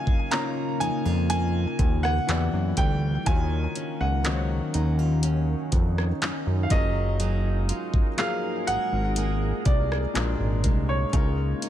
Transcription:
0.00 0.23 C#3 medium
0.00 2.26 C#3 medium
0.00 2.38 C#3 medium
0.00 0.24 A#3 medium
0.00 2.25 A#3 medium
0.00 0.24 D#4 medium
0.00 0.31 D#4 medium
0.00 2.24 D#4 medium
0.00 0.25 F4 medium
0.00 0.32 F4 medium
0.00 2.26 F4 loud
0.00 2.30 A#4 medium
0.00 0.25 C#5 medium
0.00 0.33 G#5 loud
0.07 0.17 F2 soft
0.07 kick medium
0.31 2.12 C#3 medium
0.31 1.29 A#3 medium
0.31 2.13 A#3 medium
0.31 0.79 D#4 medium
0.31 2.13 D#4 medium
0.31 0.80 F4 medium
0.31 2.14 F4 medium
0.31 2.14 C#5 medium
0.31 0.77 A#5 loud
0.31 clap loud
0.31 closed hi-hat medium
0.80 0.91 F2 soft
0.80 1.05 D#4 medium
0.80 1.28 G#5 loud
0.80 closed hi-hat medium
1.05 1.66 F2 medium
1.05 1.30 F4 medium
1.30 2.38 A#3 medium
1.30 2.38 D#4 medium
1.30 2.06 G#5 loud
1.30 closed hi-hat medium
1.79 2.20 D#2 medium
1.79 kick loud
1.79 closed hi-hat medium
2.03 2.79 F#5 loud
2.03 cross-stick medium
2.27 2.49 E2 loud
2.27 3.18 E3 medium
2.27 3.26 E3 medium
2.27 3.19 B3 medium
2.27 3.19 E4 medium
2.27 3.20 G4 medium
2.27 clap loud
2.27 closed hi-hat medium
2.31 3.20 D5 medium
2.53 2.73 F#2 medium
2.77 3.18 D2 medium
2.77 3.36 G3 medium
2.77 3.72 A4 medium
2.77 3.28 G5 loud
2.77 kick medium
2.77 closed hi-hat medium
3.26 3.67 D#2 loud
3.26 4.17 D#3 medium
3.26 6.81 D#3 medium
3.26 6.68 D#3 medium
3.26 4.17 A#3 medium
3.26 6.68 C#4 medium
3.26 10.11 D#4 medium
3.26 4.28 F4 medium
3.26 4.18 F4 medium
3.26 4.18 F#4 medium
3.26 4.19 C#5 medium
3.26 4.02 G#5 loud
3.26 kick loud
3.26 closed hi-hat medium
3.76 4.25 C#4 medium
3.76 closed hi-hat medium
4.01 4.61 C#2 medium
4.01 6.72 F#5 loud
4.24 6.06 D#3 medium
4.24 6.70 F#3 medium
4.24 6.06 A#3 medium
4.24 5.23 C#4 medium
4.24 6.07 D#4 medium
4.24 6.07 F#4 medium
4.24 4.33 C5 medium
4.24 clap loud
4.24 closed hi-hat medium
4.34 6.11 C#5 medium
4.74 5.55 D#2 loud
4.74 4.99 D#4 medium
4.74 closed hi-hat medium
4.99 5.23 F4 medium
5.23 6.21 C#4 medium
5.23 closed hi-hat medium
5.72 6.13 F2 medium
5.72 kick loud
5.72 closed hi-hat medium
5.98 cross-stick medium
6.22 6.32 F#2 medium
6.22 8.18 C#4 medium
6.22 clap loud
6.22 closed hi-hat medium
6.47 6.67 F#2 medium
6.63 6.70 F5 medium
6.70 7.72 F#1 loud
6.70 8.06 F#3 medium
6.70 7.20 F#3 medium
6.70 10.12 G#3 medium
6.70 8.07 C#4 medium
6.70 8.07 F4 medium
6.70 10.12 G#4 medium
6.70 8.08 G#4 medium
6.70 10.12 A#4 loud
6.70 8.08 A#4 medium
6.70 8.23 D#5 loud
6.70 kick loud
6.70 closed hi-hat medium
7.20 10.25 F#3 medium
7.20 8.19 G#4 medium
7.20 closed hi-hat medium
7.69 11.14 F4 medium
7.69 closed hi-hat medium
7.94 8.04 G#1 medium
7.94 kick medium
8.17 10.00 F3 medium
8.17 9.99 F#3 medium
8.17 9.99 A#3 medium
8.17 9.16 A#3 medium
8.17 10.60 G#4 medium
8.17 8.67 G#4 medium
8.17 10.01 G#4 medium
8.17 10.01 A#4 medium
8.17 8.64 F5 medium
8.17 clap loud
8.17 closed hi-hat medium
8.67 8.78 G#1 soft
8.67 9.17 G#4 medium
8.67 9.62 F#5 loud
8.67 closed hi-hat medium
8.92 9.53 G#1 medium
9.16 10.64 A#3 medium
9.16 11.14 G#4 medium
9.16 closed hi-hat medium
9.65 10.06 C2 medium
9.65 10.92 D5 medium
9.65 kick loud
9.65 closed hi-hat medium
9.92 cross-stick medium
10.14 10.35 A#1 loud
10.14 11.05 A#2 medium
10.14 11.13 A#2 medium
10.14 11.05 G#3 medium
10.14 11.69 A#3 medium
10.14 11.06 D4 medium
10.14 11.06 F#4 medium
10.14 11.07 A#4 medium
10.14 clap loud
10.14 closed hi-hat medium
10.40 10.66 G#1 medium
10.64 11.05 C2 medium
10.64 11.69 G#3 medium
10.64 11.58 A#4 medium
10.64 kick medium
10.64 closed hi-hat medium
10.89 11.69 C#5 medium
11.12 11.54 C#2 loud
11.12 11.69 C#3 medium
11.12 11.69 G#3 medium
11.12 11.69 C#4 medium
11.12 11.69 D#4 medium
11.12 11.69 F4 loud
11.12 11.69 F4 medium
11.12 11.69 A#4 medium
11.12 kick loud
11.12 closed hi-hat medium
11.62 11.69 D#4 medium
11.62 closed hi-hat medium

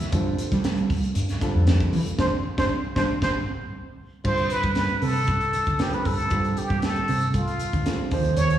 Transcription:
0.00 muted fretless electric bass stroke soft
0.00 snare soft
0.00 closed hi-hat soft
0.12 0.35 G2 loud
0.12 0.91 D3 medium
0.12 0.91 G3 medium
0.12 0.91 C4 medium
0.12 0.91 F4 medium
0.12 0.91 A4 medium
0.12 kick loud
0.12 closed hi-hat medium
0.38 muted fretless electric bass stroke soft
0.38 closed hi-hat medium
0.52 0.91 G3 medium
0.52 kick medium
0.52 snare soft
0.52 closed hi-hat soft
0.64 snare loud
0.64 closed hi-hat medium
0.78 closed hi-hat soft
0.90 1.01 D2 medium
0.90 kick medium
0.90 open hi-hat medium
1.03 closed hi-hat soft
1.15 1.38 G2 medium
1.15 closed hi-hat medium
1.29 snare soft
1.29 closed hi-hat soft
1.41 2.00 D3 medium
1.41 2.00 G3 medium
1.41 2.00 C4 medium
1.41 2.01 F4 medium
1.41 2.01 A4 medium
1.41 kick medium
1.41 snare soft
1.41 closed hi-hat medium
1.55 1.87 F2 medium
1.67 snare loud
1.67 closed hi-hat medium
1.80 kick medium
1.80 closed hi-hat soft
1.93 2.04 E3 medium
1.93 open hi-hat medium
2.06 muted fretless electric bass stroke soft
2.06 closed hi-hat soft
2.18 2.29 G1 medium
2.18 2.27 G3 medium
2.18 2.27 C4 medium
2.18 2.27 D4 medium
2.18 2.26 C5 medium
2.18 kick medium
2.18 snare medium
2.57 2.67 G1 loud
2.57 2.66 G3 medium
2.57 2.66 C4 medium
2.57 2.66 D4 medium
2.57 2.64 C5 medium
2.57 kick medium
2.57 snare medium
2.96 3.06 G1 medium
2.96 3.05 G3 medium
2.96 3.05 C4 medium
2.96 3.05 D4 loud
2.96 3.02 C5 medium
2.96 kick medium
2.96 snare medium
3.22 3.32 G1 medium
3.22 3.31 G3 medium
3.22 3.31 C4 medium
3.22 3.31 D4 medium
3.22 3.29 C5 medium
3.22 kick medium
3.22 snare medium
4.24 4.47 G2 medium
4.24 5.03 D3 medium
4.24 5.03 G3 medium
4.24 5.03 C4 medium
4.24 5.04 F4 medium
4.24 5.04 A4 medium
4.24 4.49 C5 medium
4.24 kick loud
4.24 crash medium
4.38 closed hi-hat soft
4.50 4.75 B4 medium
4.50 closed hi-hat medium
4.63 4.86 G2 medium
4.63 kick medium
4.63 closed hi-hat soft
4.75 5.01 B4 medium
4.75 snare loud
4.75 closed hi-hat medium
4.89 closed hi-hat soft
5.02 5.13 C3 medium
5.02 5.82 A4 medium
5.02 open hi-hat medium
5.15 muted fretless electric bass stroke soft
5.27 5.39 G2 medium
5.27 kick medium
5.27 closed hi-hat medium
5.41 closed hi-hat soft
5.53 muted fretless electric bass stroke soft
5.53 closed hi-hat medium
5.66 5.78 D2 medium
5.66 kick medium
5.66 closed hi-hat soft
5.79 6.19 D3 medium
5.79 6.19 G3 medium
5.79 6.19 C4 medium
5.79 6.20 F4 medium
5.79 5.95 G4 medium
5.79 6.19 B4 medium
5.79 snare loud
5.79 closed hi-hat medium
5.93 6.08 B4 medium
5.93 muted fretless electric bass stroke soft
5.93 closed hi-hat soft
6.05 6.28 G2 medium
6.05 6.51 A4 medium
6.05 kick medium
6.05 open hi-hat medium
6.19 closed hi-hat soft
6.30 6.53 G2 loud
6.30 7.09 D3 medium
6.30 7.10 G3 medium
6.30 7.10 C4 medium
6.30 7.10 F4 medium
6.30 7.10 G4 medium
6.30 kick loud
6.30 closed hi-hat medium
6.44 closed hi-hat soft
6.51 6.59 A4 medium
6.57 6.85 G4 medium
6.57 closed hi-hat medium
6.70 6.92 G2 medium
6.70 kick medium
6.82 7.35 A4 medium
6.82 snare loud
6.82 closed hi-hat medium
6.96 closed hi-hat soft
7.08 7.20 C3 medium
7.08 open hi-hat medium
7.21 muted fretless electric bass stroke soft
7.21 closed hi-hat soft
7.34 7.46 G2 medium
7.34 8.08 F4 medium
7.34 kick medium
7.34 closed hi-hat medium
7.48 closed hi-hat soft
7.59 muted fretless electric bass stroke soft
7.59 closed hi-hat medium
7.73 7.84 D2 medium
7.73 kick medium
7.73 closed hi-hat soft
7.85 8.11 D3 medium
7.85 8.12 G3 medium
7.85 8.12 C4 medium
7.85 8.12 F4 medium
7.85 8.12 A4 medium
7.85 snare medium
7.85 closed hi-hat medium
7.99 muted fretless electric bass stroke soft
8.11 8.34 D#2 medium
8.11 8.59 F3 medium
8.11 8.59 A#3 medium
8.11 8.59 D#4 medium
8.11 8.59 G#4 medium
8.11 8.59 C5 loud
8.11 kick medium
8.11 open hi-hat medium
8.25 closed hi-hat soft
8.37 8.59 D#2 medium
8.37 8.59 C#5 loud
8.37 closed hi-hat medium
8.50 closed hi-hat soft

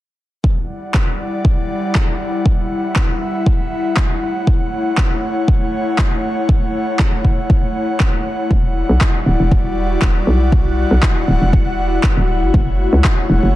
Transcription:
0.44 4.18 G3 medium
0.44 8.47 E4 medium
0.44 2.44 D5 medium
0.44 10.48 F#5 medium
0.44 kick loud
0.94 kick loud
0.94 clap loud
1.45 kick loud
1.95 kick loud
1.95 clap loud
2.46 4.20 E5 medium
2.46 kick loud
2.96 kick loud
2.96 clap loud
3.46 kick loud
3.97 kick loud
3.97 clap loud
4.22 8.47 A3 medium
4.22 8.47 C#5 medium
4.47 kick loud
4.98 kick loud
4.98 clap loud
5.48 kick loud
5.99 kick loud
5.99 clap loud
6.49 kick loud
6.99 kick loud
6.99 clap loud
7.25 kick medium
7.50 kick loud
8.00 kick loud
8.00 clap loud
8.51 8.83 E1 loud
8.51 12.25 G3 medium
8.51 13.55 E4 medium
8.51 13.55 F#4 medium
8.51 12.25 D5 medium
8.51 13.55 F#5 medium
8.51 kick loud
8.89 8.98 B1 loud
9.01 kick loud
9.01 clap loud
9.26 9.36 D1 medium
9.40 9.97 E1 medium
9.52 kick loud
10.02 10.20 E1 medium
10.02 kick loud
10.02 clap loud
10.27 10.85 B1 loud
10.52 12.27 F#5 medium
10.52 kick loud
10.91 10.99 B1 loud
11.03 kick loud
11.03 clap loud
11.28 11.38 D1 medium
11.42 11.98 E1 medium
11.53 kick loud
12.04 kick loud
12.04 clap loud
12.17 12.44 D1 medium
12.29 13.55 A3 medium
12.29 13.55 C#5 medium
12.29 13.55 F#5 medium
12.42 12.51 F#1 loud
12.54 12.87 F#1 loud
12.54 kick loud
12.93 13.01 C#2 loud
13.04 kick loud
13.04 clap loud
13.30 13.39 E1 medium
13.43 13.55 F#1 medium

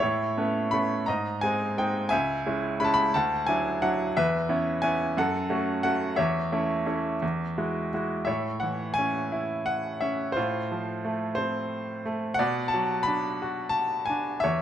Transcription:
0.00 1.05 A2 medium
0.00 1.03 E4 soft
0.00 0.73 C#5 medium
0.37 0.71 A3 soft
0.37 0.71 B3 soft
0.37 0.72 C#4 soft
0.71 1.01 A3 soft
0.71 1.01 B3 soft
0.71 1.01 C#4 soft
0.71 1.08 B5 medium
1.06 2.10 G#2 medium
1.06 2.08 D#5 medium
1.06 1.43 A#5 medium
1.41 1.76 G#3 soft
1.41 1.77 C4 soft
1.41 1.77 D#4 soft
1.41 1.78 G#5 medium
1.77 2.05 G#3 soft
1.77 2.06 C4 soft
1.77 2.06 D#4 soft
1.77 2.13 G5 medium
2.09 3.11 C#2 medium
2.09 3.10 E5 medium
2.09 2.81 G#5 medium
2.46 2.79 G#3 soft
2.46 2.80 C#4 soft
2.46 2.80 E4 soft
2.80 3.08 G#3 soft
2.80 3.08 C#4 soft
2.80 3.08 E4 soft
2.80 2.87 B5 medium
2.85 2.93 A5 medium
2.94 3.15 B5 medium
3.14 4.12 D2 medium
3.14 3.80 F#5 medium
3.14 3.49 A5 medium
3.47 3.80 F#3 soft
3.47 3.81 D4 soft
3.47 3.81 E4 soft
3.47 3.82 G#5 medium
3.82 4.08 F#3 soft
3.82 4.09 D4 soft
3.82 4.09 E4 soft
3.82 4.16 F#5 medium
4.17 5.14 E2 medium
4.17 5.13 B4 medium
4.17 4.79 E5 medium
4.49 4.82 B3 soft
4.49 4.82 C#4 soft
4.49 4.82 E4 soft
4.82 5.10 B3 soft
4.82 5.10 C#4 soft
4.82 5.10 E4 soft
4.82 5.17 G#5 medium
5.17 6.16 F#2 medium
5.17 6.15 A4 medium
5.17 5.82 F#5 medium
5.49 5.83 A3 soft
5.49 5.83 C#4 soft
5.49 5.84 F#4 soft
5.83 6.12 A3 soft
5.83 6.11 C#4 soft
5.83 6.12 F#4 medium
5.83 6.19 F#5 medium
6.16 7.20 E2 medium
6.16 7.89 C#5 medium
6.16 7.89 E5 medium
6.52 6.85 A3 soft
6.52 6.85 C#4 soft
6.52 6.85 E4 soft
6.86 7.15 A3 soft
6.86 7.15 C#4 soft
6.86 7.16 E4 soft
7.22 8.25 E2 medium
7.58 7.92 G#3 soft
7.58 7.92 E4 soft
7.58 7.93 F#4 soft
7.94 8.22 G#3 soft
7.94 8.22 E4 soft
7.94 8.22 F#4 soft
8.25 10.33 A2 medium
8.25 9.28 C#5 soft
8.25 8.62 E5 medium
8.60 9.99 E3 soft
8.60 8.97 F#5 medium
8.94 9.68 G#5 medium
8.99 10.00 C#4 soft
9.32 10.34 E4 soft
9.66 10.03 F#5 medium
10.01 10.36 C#4 soft
10.01 10.34 E5 medium
10.32 11.34 F4 soft
10.32 11.32 C5 medium
10.37 12.35 A2 medium
10.72 12.01 F3 soft
11.05 12.04 A3 soft
11.35 12.36 C4 soft
11.35 12.08 C5 medium
12.05 12.38 A3 soft
12.34 12.72 F#5 medium
12.39 14.40 B2 medium
12.39 13.37 D5 medium
12.68 13.06 A5 medium
12.74 14.06 F#3 soft
13.03 13.76 B5 medium
13.08 14.08 D4 soft
13.42 14.41 F#4 soft
13.69 14.08 A5 medium
14.06 14.43 G#5 medium
14.10 14.43 D4 soft
14.40 14.62 C#5 medium
14.40 14.62 E5 medium
14.44 14.62 E2 medium

